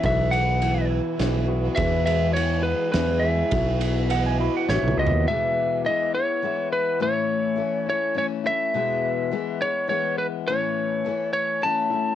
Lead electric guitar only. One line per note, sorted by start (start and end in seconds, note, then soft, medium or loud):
0.05 0.35 E5 medium
0.31 0.86 F#5 loud
1.76 2.05 E5 loud
2.06 2.33 E5 loud
2.33 2.62 C#5 medium
2.63 2.91 B4 medium
2.92 3.24 B4 medium
3.20 4.13 E5 medium
4.13 4.63 D#5 medium
4.69 4.99 C#5 medium
4.99 5.27 D#5 medium
5.28 5.81 E5 loud
5.86 6.14 D#5 medium
6.15 6.68 C#5 medium
6.73 7.02 B4 medium
7.02 7.88 C#5 loud
7.90 8.17 C#5 medium
8.18 8.26 C#5 medium
8.47 9.65 E5 loud
9.62 9.88 C#5 loud
9.89 10.18 C#5 medium
10.18 10.26 B4 medium
10.48 11.32 C#5 loud
11.33 11.63 C#5 medium
11.63 12.15 A5 loud